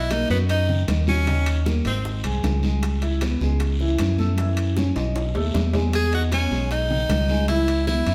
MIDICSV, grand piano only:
0, 0, Header, 1, 2, 480
1, 0, Start_track
1, 0, Key_signature, 5, "major"
1, 0, Tempo, 388475
1, 1573, Time_signature, 4, 2, 24, 8
1, 10066, End_track
2, 0, Start_track
2, 0, Title_t, "Grand piano"
2, 0, Program_c, 0, 0
2, 132, Note_on_c, 0, 58, 64
2, 137, Note_on_c, 0, 70, 64
2, 329, Note_off_c, 0, 58, 0
2, 332, Note_off_c, 0, 70, 0
2, 369, Note_on_c, 0, 54, 72
2, 372, Note_on_c, 0, 66, 73
2, 764, Note_off_c, 0, 54, 0
2, 766, Note_off_c, 0, 66, 0
2, 847, Note_on_c, 0, 51, 75
2, 848, Note_on_c, 0, 63, 79
2, 1243, Note_off_c, 0, 51, 0
2, 1243, Note_off_c, 0, 63, 0
2, 1327, Note_on_c, 0, 54, 74
2, 1331, Note_on_c, 0, 66, 68
2, 1526, Note_off_c, 0, 54, 0
2, 1528, Note_off_c, 0, 66, 0
2, 1574, Note_on_c, 0, 51, 72
2, 1575, Note_on_c, 0, 63, 79
2, 1967, Note_off_c, 0, 51, 0
2, 1967, Note_off_c, 0, 63, 0
2, 2045, Note_on_c, 0, 58, 62
2, 2050, Note_on_c, 0, 70, 62
2, 2245, Note_off_c, 0, 58, 0
2, 2248, Note_off_c, 0, 70, 0
2, 2294, Note_on_c, 0, 63, 69
2, 2294, Note_on_c, 0, 75, 73
2, 2687, Note_off_c, 0, 63, 0
2, 2687, Note_off_c, 0, 75, 0
2, 2768, Note_on_c, 0, 56, 74
2, 2770, Note_on_c, 0, 68, 72
2, 3163, Note_off_c, 0, 56, 0
2, 3165, Note_off_c, 0, 68, 0
2, 3256, Note_on_c, 0, 56, 70
2, 3262, Note_on_c, 0, 68, 68
2, 3648, Note_off_c, 0, 56, 0
2, 3652, Note_off_c, 0, 68, 0
2, 3732, Note_on_c, 0, 64, 74
2, 3736, Note_on_c, 0, 76, 74
2, 3929, Note_off_c, 0, 64, 0
2, 3932, Note_off_c, 0, 76, 0
2, 3979, Note_on_c, 0, 59, 66
2, 3985, Note_on_c, 0, 71, 64
2, 4173, Note_off_c, 0, 59, 0
2, 4177, Note_off_c, 0, 71, 0
2, 4220, Note_on_c, 0, 56, 69
2, 4225, Note_on_c, 0, 68, 73
2, 4611, Note_off_c, 0, 56, 0
2, 4613, Note_off_c, 0, 68, 0
2, 4700, Note_on_c, 0, 52, 77
2, 4703, Note_on_c, 0, 64, 75
2, 5091, Note_off_c, 0, 52, 0
2, 5092, Note_off_c, 0, 64, 0
2, 5178, Note_on_c, 0, 69, 71
2, 5179, Note_on_c, 0, 57, 72
2, 5372, Note_off_c, 0, 69, 0
2, 5373, Note_off_c, 0, 57, 0
2, 5419, Note_on_c, 0, 52, 77
2, 5423, Note_on_c, 0, 64, 77
2, 5810, Note_off_c, 0, 52, 0
2, 5812, Note_off_c, 0, 64, 0
2, 5895, Note_on_c, 0, 61, 62
2, 5896, Note_on_c, 0, 73, 64
2, 6091, Note_off_c, 0, 61, 0
2, 6091, Note_off_c, 0, 73, 0
2, 6128, Note_on_c, 0, 63, 71
2, 6134, Note_on_c, 0, 75, 71
2, 6524, Note_off_c, 0, 63, 0
2, 6527, Note_off_c, 0, 75, 0
2, 6615, Note_on_c, 0, 57, 67
2, 6620, Note_on_c, 0, 69, 68
2, 7007, Note_off_c, 0, 57, 0
2, 7011, Note_off_c, 0, 69, 0
2, 7095, Note_on_c, 0, 56, 71
2, 7099, Note_on_c, 0, 68, 70
2, 7487, Note_off_c, 0, 56, 0
2, 7490, Note_off_c, 0, 68, 0
2, 7577, Note_on_c, 0, 63, 67
2, 7580, Note_on_c, 0, 75, 73
2, 7772, Note_off_c, 0, 63, 0
2, 7774, Note_off_c, 0, 75, 0
2, 7825, Note_on_c, 0, 59, 67
2, 7827, Note_on_c, 0, 71, 65
2, 8017, Note_off_c, 0, 59, 0
2, 8018, Note_off_c, 0, 71, 0
2, 8059, Note_on_c, 0, 56, 71
2, 8062, Note_on_c, 0, 68, 74
2, 8450, Note_off_c, 0, 56, 0
2, 8452, Note_off_c, 0, 68, 0
2, 8532, Note_on_c, 0, 51, 82
2, 8535, Note_on_c, 0, 63, 83
2, 8926, Note_off_c, 0, 51, 0
2, 8928, Note_off_c, 0, 63, 0
2, 9009, Note_on_c, 0, 56, 69
2, 9014, Note_on_c, 0, 68, 69
2, 9207, Note_off_c, 0, 56, 0
2, 9210, Note_off_c, 0, 68, 0
2, 9252, Note_on_c, 0, 52, 78
2, 9253, Note_on_c, 0, 64, 80
2, 9646, Note_off_c, 0, 52, 0
2, 9647, Note_off_c, 0, 64, 0
2, 9733, Note_on_c, 0, 59, 65
2, 9737, Note_on_c, 0, 71, 66
2, 9929, Note_off_c, 0, 59, 0
2, 9932, Note_off_c, 0, 71, 0
2, 9968, Note_on_c, 0, 64, 73
2, 9972, Note_on_c, 0, 76, 73
2, 10066, Note_off_c, 0, 64, 0
2, 10066, Note_off_c, 0, 76, 0
2, 10066, End_track
0, 0, End_of_file